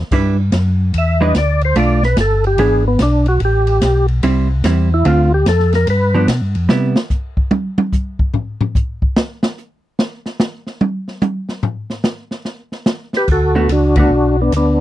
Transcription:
0.11 0.51 G2 medium
0.11 0.36 G3 medium
0.11 0.36 D4 medium
0.11 0.36 E4 medium
0.11 0.36 B4 medium
0.11 kick medium
0.11 crash medium
0.52 0.92 F#2 loud
0.52 kick soft
0.52 snare medium
0.52 hi-hat pedal medium
0.52 ride medium
0.93 1.33 E2 medium
0.93 kick soft
0.93 ride medium
0.98 1.22 E5 medium
1.21 1.33 G3 medium
1.21 1.34 D4 medium
1.21 1.34 E4 medium
1.21 1.34 B4 medium
1.21 1.35 D#5 loud
1.34 1.74 D2 medium
1.34 1.62 D5 medium
1.34 kick soft
1.34 snare medium
1.34 hi-hat pedal medium
1.34 ride medium
1.61 1.77 C5 medium
1.61 ride medium
1.75 2.15 B1 medium
1.75 2.00 A3 medium
1.75 2.00 D4 medium
1.75 2.00 F4 medium
1.75 2.04 D5 medium
1.75 kick soft
1.75 ride medium
2.03 2.18 B4 medium
2.03 snare soft
2.17 2.57 G1 loud
2.17 2.45 A4 medium
2.17 kick soft
2.17 snare medium
2.17 hi-hat pedal medium
2.17 ride medium
2.44 2.59 G4 medium
2.44 ride soft
2.58 2.98 G#1 medium
2.58 2.83 E3 medium
2.58 2.83 B3 medium
2.58 2.83 D4 medium
2.58 2.83 G#4 medium
2.58 2.85 G#4 medium
2.58 kick soft
2.58 ride medium
2.88 3.00 B3 medium
2.99 3.39 B1 loud
2.99 3.27 D4 medium
2.99 kick soft
2.99 snare medium
2.99 hi-hat pedal medium
2.99 ride medium
3.26 3.41 F#4 medium
3.26 ride medium
3.40 3.80 A1 loud
3.40 kick soft
3.40 ride medium
3.45 4.06 G4 medium
3.67 ride medium
3.81 4.21 B1 loud
3.81 kick soft
3.81 snare medium
3.81 hi-hat pedal medium
3.81 ride medium
4.08 ride soft
4.22 4.62 C2 medium
4.22 4.47 G3 medium
4.22 4.47 C4 medium
4.22 4.48 E4 medium
4.22 kick soft
4.22 ride medium
4.64 5.04 E2 loud
4.64 4.88 G3 medium
4.64 4.89 C4 medium
4.64 4.89 E4 medium
4.64 kick soft
4.64 snare medium
4.64 hi-hat pedal medium
4.64 ride medium
4.94 5.06 E4 loud
5.05 5.45 D2 loud
5.05 5.29 D3 medium
5.05 5.29 A3 medium
5.05 5.29 C4 medium
5.05 5.30 F4 medium
5.05 5.32 F4 medium
5.05 kick soft
5.05 ride medium
5.34 5.47 G4 medium
5.46 5.86 F2 loud
5.46 5.73 A4 medium
5.46 kick soft
5.46 snare medium
5.46 hi-hat pedal medium
5.46 ride medium
5.60 snare soft
5.73 5.88 A#4 medium
5.73 snare soft
5.73 ride medium
5.87 6.27 G2 medium
5.87 6.27 B4 medium
5.87 kick soft
5.87 ride medium
6.14 6.27 F3 medium
6.14 6.28 B3 medium
6.14 6.28 D4 medium
6.28 6.41 B2 loud
6.28 kick soft
6.28 snare medium
6.28 hi-hat pedal medium
6.28 ride medium
6.42 6.56 G2 medium
6.55 6.68 F2 medium
6.55 ride medium
6.69 6.96 C3 medium
6.69 6.93 G3 medium
6.69 6.94 B3 medium
6.69 6.94 E4 medium
6.69 snare medium
6.96 snare loud
7.10 kick medium
7.10 hi-hat pedal medium
7.37 kick medium
7.51 high tom loud
7.78 high tom loud
7.93 kick medium
7.93 hi-hat pedal medium
8.19 kick medium
8.34 floor tom loud
8.61 floor tom loud
8.75 kick medium
8.75 hi-hat pedal medium
9.02 kick medium
9.17 snare loud
9.43 snare loud
9.57 hi-hat pedal medium
9.99 snare loud
10.26 snare medium
10.40 snare loud
10.40 hi-hat pedal medium
10.67 snare soft
10.81 high tom loud
11.08 snare soft
11.22 hi-hat pedal medium
11.22 high tom loud
11.49 snare medium
11.63 floor tom loud
11.90 snare soft
12.04 snare loud
12.04 hi-hat pedal medium
12.31 snare soft
12.45 snare soft
12.72 snare soft
12.86 snare loud
12.86 hi-hat pedal medium
13.13 13.29 G4 loud
13.13 13.29 B4 loud
13.13 snare medium
13.28 13.68 D2 medium
13.28 kick medium
13.28 crash medium
13.32 13.69 F#4 medium
13.32 13.73 A4 medium
13.55 13.68 D3 medium
13.55 13.68 A3 medium
13.55 13.69 B3 medium
13.55 13.69 F#4 medium
13.69 14.09 C#2 medium
13.69 13.96 D4 medium
13.69 13.98 F#4 medium
13.69 kick soft
13.69 hi-hat pedal soft
13.69 ride medium
13.96 14.10 D3 soft
13.96 14.10 A3 medium
13.96 14.10 B3 medium
13.96 14.37 D4 medium
13.96 14.10 F#4 medium
13.96 14.41 F#4 medium
13.96 kick medium
13.96 ride medium
14.10 14.51 B1 medium
14.42 14.53 B3 medium
14.42 14.53 D4 medium
14.52 14.80 D2 medium
14.52 kick soft
14.52 hi-hat pedal medium
14.52 ride medium
14.57 14.80 B3 medium
14.57 14.80 D4 medium

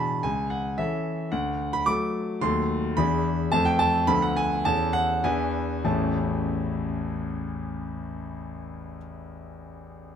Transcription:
0.00 0.23 B2 medium
0.00 0.21 E3 soft
0.00 0.21 D4 soft
0.00 0.21 G#4 soft
0.00 0.26 A5 medium
0.00 0.24 B5 medium
0.23 0.77 C#2 medium
0.23 0.51 G#5 medium
0.50 0.78 F#5 medium
0.78 1.29 E3 medium
0.78 1.29 C#4 medium
0.78 1.30 A4 medium
0.78 1.33 E5 medium
1.32 1.85 D2 medium
1.32 1.73 F#5 medium
1.73 1.87 B5 loud
1.86 2.38 F#3 medium
1.86 2.39 A3 medium
1.86 2.39 A4 medium
1.86 2.42 D6 loud
2.41 2.95 D#2 medium
2.41 2.93 F#3 medium
2.41 2.93 A3 medium
2.41 2.94 A4 medium
2.41 2.97 C6 loud
2.97 3.51 E2 medium
2.97 3.49 E3 medium
2.97 3.49 D4 medium
2.97 3.49 G#4 medium
2.97 3.52 B5 loud
3.52 4.07 F2 medium
3.52 4.05 A3 medium
3.52 4.05 C4 medium
3.52 4.05 A4 medium
3.52 3.66 A5 loud
3.65 3.80 G5 loud
3.79 4.08 A5 loud
4.07 4.63 D2 medium
4.07 4.62 F3 medium
4.07 4.62 B3 medium
4.07 4.62 A4 medium
4.07 4.22 B5 loud
4.22 4.37 F#5 medium
4.37 4.65 G#5 loud
4.65 5.23 E2 medium
4.65 5.20 E3 medium
4.65 5.21 C#4 medium
4.65 5.21 A4 medium
4.65 4.94 A5 loud
4.93 5.23 F#5 loud
5.24 5.83 E2 medium
5.24 5.82 E3 medium
5.24 5.82 D4 medium
5.24 5.82 B4 medium
5.24 5.86 G#5 medium
5.84 8.97 A1 medium
5.84 8.97 E2 medium
5.84 8.97 E3 medium
5.84 8.98 A3 medium
5.84 8.98 C#4 medium
5.84 8.98 E4 medium
5.84 8.97 A5 medium

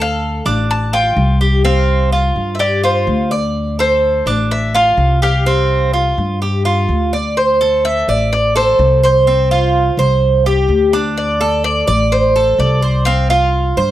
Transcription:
0.00 0.39 D2 medium
0.00 0.45 A4 medium
0.00 0.70 F5 loud
0.46 1.13 A1 medium
0.46 0.92 D4 medium
0.71 0.92 A5 medium
0.93 1.40 F4 medium
0.93 1.65 G5 medium
1.17 2.30 C2 loud
1.41 1.64 G4 medium
1.65 2.11 C4 medium
1.65 2.54 F5 medium
2.12 2.59 F4 medium
2.36 3.04 G2 medium
2.55 2.61 E5 medium
2.59 2.83 G4 medium
2.59 2.82 D5 medium
2.83 3.30 F4 medium
2.83 3.29 C5 medium
3.07 4.20 D2 loud
3.31 3.78 D5 medium
3.79 4.26 A4 medium
3.79 4.24 C5 loud
4.26 4.94 A1 medium
4.26 4.73 D4 medium
4.51 4.75 E5 loud
4.75 5.21 F4 medium
4.75 5.19 F5 loud
4.97 6.11 C2 loud
5.22 5.45 G4 medium
5.22 6.86 F5 loud
5.46 5.93 C4 medium
5.93 6.40 F4 medium
6.18 6.85 G2 medium
6.42 6.65 G4 medium
6.65 7.11 F4 medium
6.89 8.02 D2 medium
7.13 7.36 D5 medium
7.37 7.84 C5 medium
7.61 8.07 A4 medium
7.85 8.29 E5 loud
8.08 8.75 A1 medium
8.08 8.55 D5 medium
8.33 8.56 D5 loud
8.56 9.02 A4 medium
8.56 9.00 C5 medium
8.79 9.92 C2 loud
9.04 9.27 C5 medium
9.04 9.95 C5 medium
9.27 9.50 C4 medium
9.51 9.97 F4 medium
9.97 10.65 C2 loud
9.97 10.45 C5 medium
10.46 10.92 G4 medium
10.69 11.81 D2 loud
10.93 11.39 D4 medium
11.17 11.63 D5 medium
11.41 11.87 A4 medium
11.64 12.12 D5 loud
11.87 12.55 A1 medium
11.87 12.34 D5 medium
12.12 12.59 C5 medium
12.36 12.82 A4 medium
12.58 13.71 C2 loud
12.58 13.05 D5 loud
12.82 13.06 C5 medium
13.05 13.30 C4 medium
13.05 13.28 F5 loud
13.30 13.76 F4 medium
13.30 13.91 F5 medium
13.77 13.91 G2 loud
13.77 13.91 C5 medium

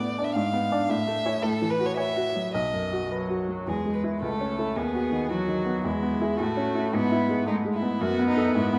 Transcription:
0.00 0.34 A2 soft
0.00 0.29 B3 soft
0.00 0.25 D5 soft
0.18 0.34 D4 soft
0.18 0.34 D5 soft
0.24 0.35 E5 soft
0.35 0.88 G#2 soft
0.35 0.91 F5 soft
0.53 0.82 B3 soft
0.72 0.88 D4 soft
0.72 0.88 D5 soft
0.89 1.42 A2 soft
0.89 1.44 E5 medium
1.07 1.36 A3 soft
1.26 1.42 E4 soft
1.26 1.42 C#5 soft
1.43 2.51 A2 soft
1.43 1.72 A4 medium
1.62 1.91 E3 soft
1.70 1.87 B4 medium
1.80 2.09 F#4 soft
1.86 1.97 C#5 soft
1.97 2.27 C#5 soft
1.97 2.53 E5 medium
2.17 2.47 F#4 soft
2.36 2.54 F#3 soft
2.55 3.64 B1 soft
2.55 3.10 D#5 soft
2.74 3.04 F#2 soft
2.93 3.23 F#4 soft
3.11 3.69 F#3 soft
3.11 3.42 B4 soft
3.30 3.60 F#4 soft
3.49 3.67 F#3 soft
3.67 4.20 E2 soft
3.67 4.22 G#3 soft
3.67 3.93 G#4 soft
3.86 4.15 G#3 soft
3.95 4.03 B4 soft
4.04 4.20 E4 soft
4.04 4.21 B4 soft
4.21 4.75 C#2 soft
4.21 4.79 A3 soft
4.21 4.78 A4 soft
4.41 4.69 C#4 soft
4.59 4.75 E4 soft
4.59 4.75 A4 soft
4.76 5.81 D#2 soft
4.76 5.30 B3 soft
4.76 5.32 G#4 soft
4.94 5.24 F#4 soft
5.12 5.41 D#3 soft
5.30 5.49 E3 soft
5.30 5.87 F#3 soft
5.30 5.84 F#4 soft
5.48 5.77 D#3 soft
5.66 5.84 B3 soft
5.84 6.37 E2 soft
5.84 6.39 G#3 soft
5.84 6.39 E4 soft
6.03 6.32 B3 soft
6.21 6.37 E4 soft
6.21 6.38 G#4 soft
6.38 6.92 A2 soft
6.38 6.95 A3 soft
6.38 6.93 F#4 soft
6.57 6.86 C#4 soft
6.75 6.91 E4 soft
6.93 7.98 G#2 soft
6.93 7.47 B3 medium
6.93 7.46 E4 soft
7.12 7.40 E4 soft
7.29 7.58 G#3 soft
7.46 7.55 G#3 medium
7.46 7.65 A3 soft
7.46 7.55 D#4 soft
7.65 7.94 G#3 soft
7.74 8.03 E4 soft
7.82 8.01 B3 soft
8.01 8.54 F#2 soft
8.01 8.79 B3 medium
8.01 8.28 F#4 medium
8.19 8.48 B3 soft
8.28 8.55 D#4 medium
8.37 8.53 D#4 soft
8.37 8.54 A4 soft
8.55 8.79 G#2 soft
8.55 8.79 E4 soft
8.73 8.79 B3 soft

